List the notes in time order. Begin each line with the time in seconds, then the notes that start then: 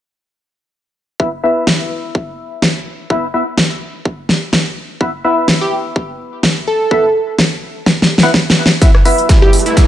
1.20 B3 E4 B4 E5, kick
1.43 B3 E4 B4 E5
1.67 kick, snare
2.15 kick
2.62 kick, snare
3.10 B3 E4 B4 E5, kick
3.34 B3 E4 B4 E5
3.58 kick, snare
4.05 kick
4.29 snare
4.53 kick, snare
5.01 B3 E4 B4 E5, kick
5.24 B3 E4 B4 E5
5.48 kick, snare
5.61 G4
5.96 kick
6.43 kick, snare
6.67 A4
6.91 B3 E4 B4 E5, kick
7.39 kick, snare
7.86 kick, snare
8.02 snare
8.18 snare
8.23 B3 E4 B4 F#5
8.34 kick, snare
8.50 snare
8.66 snare
8.82 B3 E4 B4 E5, kick, snare, closed hi-hat, tambourine, riser
8.95 cross-stick, snare
9.05 B3 E4 B4 E5, open hi-hat, tambourine
9.18 closed hi-hat
9.23 B4
9.29 kick, snare, closed hi-hat, tambourine
9.38 F#5 E6
9.42 G4, snare
9.53 open hi-hat, tambourine
9.60 closed hi-hat
9.66 E4, snare, closed hi-hat
9.77 kick, snare, closed hi-hat, tambourine